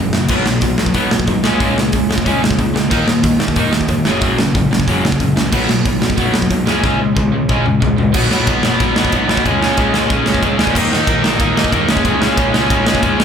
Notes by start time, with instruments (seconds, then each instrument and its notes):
Already playing: picked electric bass F#1
0.00 distorted electric guitar F#2 C#3
0.13 picked electric bass F#1, distorted electric guitar F#2 C#3, snare
0.28 picked electric bass B1, distorted electric guitar B2 F#3 B3, kick, crash
0.45 picked electric bass B1, distorted electric guitar B2 F#3, snare
0.61 picked electric bass B1, distorted electric guitar B2 F#3, kick, open hi-hat
0.78 picked electric bass B1, distorted electric guitar B2 F#3, snare
0.86 kick
0.94 picked electric bass B1, distorted electric guitar B2 F#3 B3, kick, open hi-hat
1.11 picked electric bass B1, distorted electric guitar B2 F#3, snare
1.20 kick
1.26 picked electric bass B1, distorted electric guitar B2 F#3, kick, open hi-hat
1.43 picked electric bass C#2, distorted electric guitar C#3 G#3 C#4, snare
1.60 picked electric bass C#2, distorted electric guitar C#3 G#3 C#4, kick, open hi-hat
1.77 distorted electric guitar C#3 G#3, snare
1.92 picked electric bass C#2, distorted electric guitar C#3 G#3, kick, open hi-hat
2.09 distorted electric guitar C#3 G#3, snare
2.18 kick
2.25 picked electric bass C#2, distorted electric guitar C#3 G#3 C#4, kick, open hi-hat
2.41 picked electric bass C#2, distorted electric guitar C#3 G#3, snare
2.51 kick
2.58 picked electric bass C#2, distorted electric guitar C#3 G#3, kick, open hi-hat
2.74 picked electric bass C#2, distorted electric guitar C#3 G#3, snare
2.90 picked electric bass D#2, distorted electric guitar D#3 A#3 D#4, kick, crash
3.06 picked electric bass D#2, distorted electric guitar D#3 A#3, snare
3.23 picked electric bass D#2, distorted electric guitar D#3 A#3, kick, open hi-hat
3.39 picked electric bass D#2, distorted electric guitar D#3 A#3, snare
3.48 kick
3.56 picked electric bass D#2, distorted electric guitar D#3 A#3 D#4, kick, open hi-hat
3.72 picked electric bass D#2, distorted electric guitar D#3 A#3, snare
3.81 kick
3.88 picked electric bass D#2, distorted electric guitar D#3 A#3, kick, open hi-hat
4.05 picked electric bass F#1, distorted electric guitar F#2 C#3 F#3, snare
4.21 picked electric bass F#1, distorted electric guitar F#2 C#3 F#3, kick, open hi-hat
4.39 distorted electric guitar F#2 C#3, snare
4.54 picked electric bass F#1, distorted electric guitar F#2 C#3, kick, open hi-hat
4.72 distorted electric guitar F#2 C#3, snare
4.80 kick
4.88 picked electric bass F#1, distorted electric guitar F#2 C#3 F#3, kick, open hi-hat
5.04 picked electric bass F#1, distorted electric guitar F#2 C#3, snare
5.12 kick
5.20 picked electric bass F#1, distorted electric guitar F#2 C#3, kick, open hi-hat
5.36 picked electric bass C#2, distorted electric guitar F#2 C#3, snare
5.52 picked electric bass B1, distorted electric guitar B2 F#3 B3, kick, crash
5.69 picked electric bass B1, distorted electric guitar B2 F#3, snare
5.86 picked electric bass B1, distorted electric guitar B2 F#3, kick, open hi-hat
6.02 picked electric bass B1, distorted electric guitar B2 F#3, snare
6.10 kick
6.17 picked electric bass B1, distorted electric guitar B2 F#3 B3, kick, open hi-hat
6.34 picked electric bass B1, distorted electric guitar B2 F#3, snare
6.42 kick
6.50 picked electric bass B1, distorted electric guitar B2 F#3, kick, open hi-hat
6.67 picked electric bass C#2, distorted electric guitar C#3 G#3 C#4, snare
6.84 picked electric bass C#2, distorted electric guitar C#3 G#3 C#4, kick, snare
7.00 distorted electric guitar C#3 G#3
7.17 picked electric bass C#2, distorted electric guitar C#3 G#3, kick, high tom
7.34 distorted electric guitar C#3 G#3
7.49 picked electric bass C#2, distorted electric guitar C#3 G#3 C#4, kick, mid tom
7.66 picked electric bass C#2, distorted electric guitar C#3 G#3, mid tom
7.82 picked electric bass C#2, distorted electric guitar C#3 G#3, kick, floor tom
7.98 picked electric bass A#1, distorted electric guitar C#3 G#3, floor tom
8.14 picked electric bass B1, distorted electric guitar B2 F#3 B3, kick, crash
8.31 distorted electric guitar B2 F#3 B3, snare
8.47 picked electric bass B1, distorted electric guitar B2 F#3 B3, kick, ride
8.63 picked electric bass F#1, distorted electric guitar B2 F#3 B3, snare
8.80 picked electric bass B1, distorted electric guitar B2 F#3 B3, kick, ride
8.96 distorted electric guitar B2 F#3 B3, snare
9.05 kick
9.12 picked electric bass B1, distorted electric guitar B2 F#3 B3, kick, ride
9.28 picked electric bass B1, distorted electric guitar B2 F#3 B3, snare
9.37 kick
9.45 picked electric bass C#2, distorted electric guitar C#3 G#3 C#4, kick, ride
9.62 distorted electric guitar C#3 G#3 C#4, snare
9.77 picked electric bass C#2, distorted electric guitar C#3 G#3 C#4, kick, ride
9.94 picked electric bass C#2, distorted electric guitar C#3 G#3 C#4, snare
10.10 picked electric bass C#2, distorted electric guitar C#3 G#3 C#4, kick, ride
10.26 distorted electric guitar C#3 G#3 C#4, snare
10.34 kick
10.43 picked electric bass C#2, distorted electric guitar C#3 G#3 C#4, kick, ride
10.58 picked electric bass D2, distorted electric guitar C#3 G#3 C#4, snare
10.67 kick
10.74 picked electric bass D#2, distorted electric guitar D#3 A#3 D#4, kick, crash
10.91 distorted electric guitar D#3 A#3 D#4, snare
11.07 picked electric bass D#2, distorted electric guitar D#3 A#3 D#4, kick, ride
11.23 picked electric bass A#1, distorted electric guitar D#3 A#3 D#4, snare
11.40 picked electric bass D#2, distorted electric guitar D#3 A#3 D#4, kick, ride
11.56 distorted electric guitar D#3 A#3 D#4, snare
11.64 kick
11.72 picked electric bass D#2, distorted electric guitar D#3 A#3 D#4, kick, ride
11.89 picked electric bass C#2, distorted electric guitar C#3 G#3 C#4, snare
11.97 kick
12.05 picked electric bass C#2, distorted electric guitar C#3 G#3 C#4, kick, ride
12.21 distorted electric guitar C#3 G#3 C#4, snare
12.37 picked electric bass C#2, distorted electric guitar C#3 G#3 C#4, kick, ride
12.54 picked electric bass C#2, distorted electric guitar C#3 G#3 C#4, snare
12.70 picked electric bass C#2, distorted electric guitar C#3 G#3 C#4, kick, ride
12.87 distorted electric guitar C#3 G#3 C#4, snare
12.95 kick
13.03 picked electric bass C#2, distorted electric guitar C#3 G#3 C#4, kick, ride
13.18 picked electric bass C#2, distorted electric guitar C#3 G#3 C#4, snare